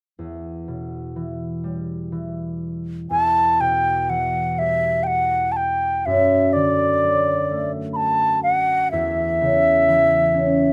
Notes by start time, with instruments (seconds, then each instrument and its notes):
0.19 harp E2
0.68 harp B2
1.16 harp E3
1.64 harp G3
2.12 harp E3
3.10 harp E2, flute A5
3.60 harp B2, flute G5
4.09 harp E3, flute F#5
4.59 harp G3, flute E5
5.03 flute F#5 G5
5.52 flute A5
5.57 flute G5
6.06 harp F#2, flute E5
6.53 harp D3, flute D5
7.04 harp F#3
7.51 harp A3
7.93 flute A5 B5
8.43 flute F#5
8.91 harp E2, flute E5
9.41 harp C#3
9.88 harp E3
10.34 harp C#4